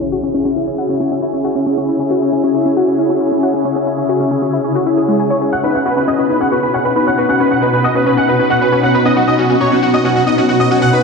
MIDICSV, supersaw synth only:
0, 0, Header, 1, 2, 480
1, 0, Start_track
1, 0, Key_signature, 4, "minor"
1, 0, Tempo, 441176
1, 252, Time_signature, 4, 2, 24, 8
1, 12004, End_track
2, 0, Start_track
2, 0, Title_t, "Supersaw synth"
2, 0, Program_c, 0, 81
2, 6011, Note_on_c, 0, 78, 93
2, 6089, Note_off_c, 0, 78, 0
2, 6131, Note_on_c, 0, 71, 59
2, 6209, Note_off_c, 0, 71, 0
2, 6251, Note_on_c, 0, 78, 89
2, 6329, Note_off_c, 0, 78, 0
2, 6372, Note_on_c, 0, 71, 61
2, 6449, Note_off_c, 0, 71, 0
2, 6492, Note_on_c, 0, 71, 59
2, 6570, Note_off_c, 0, 71, 0
2, 6611, Note_on_c, 0, 75, 84
2, 6689, Note_off_c, 0, 75, 0
2, 6731, Note_on_c, 0, 71, 61
2, 6809, Note_off_c, 0, 71, 0
2, 6852, Note_on_c, 0, 71, 61
2, 6929, Note_off_c, 0, 71, 0
2, 6971, Note_on_c, 0, 78, 87
2, 7049, Note_off_c, 0, 78, 0
2, 7092, Note_on_c, 0, 71, 60
2, 7169, Note_off_c, 0, 71, 0
2, 7211, Note_on_c, 0, 71, 59
2, 7289, Note_off_c, 0, 71, 0
2, 7331, Note_on_c, 0, 78, 90
2, 7409, Note_off_c, 0, 78, 0
2, 7451, Note_on_c, 0, 71, 60
2, 7529, Note_off_c, 0, 71, 0
2, 7571, Note_on_c, 0, 71, 59
2, 7649, Note_off_c, 0, 71, 0
2, 7691, Note_on_c, 0, 78, 83
2, 7769, Note_off_c, 0, 78, 0
2, 7812, Note_on_c, 0, 71, 59
2, 7890, Note_off_c, 0, 71, 0
2, 7931, Note_on_c, 0, 78, 93
2, 8009, Note_off_c, 0, 78, 0
2, 8051, Note_on_c, 0, 71, 62
2, 8129, Note_off_c, 0, 71, 0
2, 8171, Note_on_c, 0, 78, 88
2, 8249, Note_off_c, 0, 78, 0
2, 8292, Note_on_c, 0, 71, 60
2, 8370, Note_off_c, 0, 71, 0
2, 8412, Note_on_c, 0, 71, 60
2, 8490, Note_off_c, 0, 71, 0
2, 8533, Note_on_c, 0, 75, 88
2, 8610, Note_off_c, 0, 75, 0
2, 8652, Note_on_c, 0, 71, 60
2, 8730, Note_off_c, 0, 71, 0
2, 8773, Note_on_c, 0, 71, 61
2, 8850, Note_off_c, 0, 71, 0
2, 8893, Note_on_c, 0, 78, 89
2, 8970, Note_off_c, 0, 78, 0
2, 9012, Note_on_c, 0, 71, 61
2, 9090, Note_off_c, 0, 71, 0
2, 9132, Note_on_c, 0, 71, 59
2, 9210, Note_off_c, 0, 71, 0
2, 9251, Note_on_c, 0, 78, 90
2, 9329, Note_off_c, 0, 78, 0
2, 9372, Note_on_c, 0, 71, 60
2, 9450, Note_off_c, 0, 71, 0
2, 9492, Note_on_c, 0, 71, 61
2, 9570, Note_off_c, 0, 71, 0
2, 9612, Note_on_c, 0, 78, 88
2, 9690, Note_off_c, 0, 78, 0
2, 9731, Note_on_c, 0, 71, 62
2, 9809, Note_off_c, 0, 71, 0
2, 9851, Note_on_c, 0, 75, 94
2, 9929, Note_off_c, 0, 75, 0
2, 9971, Note_on_c, 0, 66, 64
2, 10049, Note_off_c, 0, 66, 0
2, 10091, Note_on_c, 0, 75, 89
2, 10169, Note_off_c, 0, 75, 0
2, 10211, Note_on_c, 0, 66, 62
2, 10289, Note_off_c, 0, 66, 0
2, 10331, Note_on_c, 0, 66, 60
2, 10409, Note_off_c, 0, 66, 0
2, 10451, Note_on_c, 0, 73, 82
2, 10529, Note_off_c, 0, 73, 0
2, 10571, Note_on_c, 0, 66, 59
2, 10649, Note_off_c, 0, 66, 0
2, 10691, Note_on_c, 0, 66, 62
2, 10769, Note_off_c, 0, 66, 0
2, 10811, Note_on_c, 0, 75, 90
2, 10889, Note_off_c, 0, 75, 0
2, 10931, Note_on_c, 0, 66, 62
2, 11009, Note_off_c, 0, 66, 0
2, 11051, Note_on_c, 0, 66, 60
2, 11129, Note_off_c, 0, 66, 0
2, 11171, Note_on_c, 0, 75, 91
2, 11249, Note_off_c, 0, 75, 0
2, 11291, Note_on_c, 0, 66, 59
2, 11369, Note_off_c, 0, 66, 0
2, 11410, Note_on_c, 0, 66, 60
2, 11489, Note_off_c, 0, 66, 0
2, 11531, Note_on_c, 0, 75, 88
2, 11609, Note_off_c, 0, 75, 0
2, 11651, Note_on_c, 0, 66, 61
2, 11729, Note_off_c, 0, 66, 0
2, 11770, Note_on_c, 0, 78, 96
2, 11849, Note_off_c, 0, 78, 0
2, 11889, Note_on_c, 0, 71, 62
2, 11968, Note_off_c, 0, 71, 0
2, 12004, End_track
0, 0, End_of_file